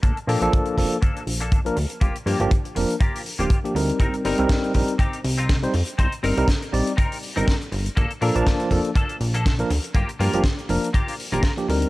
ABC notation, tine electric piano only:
X:1
M:4/4
L:1/16
Q:"Swing 16ths" 1/4=121
K:Cdor
V:1 name="Tine electric piano"
z2 [F,B,DA] [F,B,DA]3 [F,B,DA] z6 [F,B,DB] z2 | z2 [F,B,DG] [F,B,DG] z2 [F,B,DB] z4 [F,B,DG] z [F,B,DG] [G,CEB]2- | [G,CEB]2 [G,CEB] [G,CEB]3 [G,CEB] z6 [G,CEc] z2 | z2 [G,CEB] [G,CEB] z2 [G,CEd] z4 [G,CEB] z4 |
z2 [F,B,DA] [F,B,Da]3 [F,B,DA] z6 [F,B,DB] z2 | z2 [F,B,DG] [F,B,DG] z2 [F,B,DB] z4 [F,B,DG] z [F,B,DG] [G,CEB]2 |]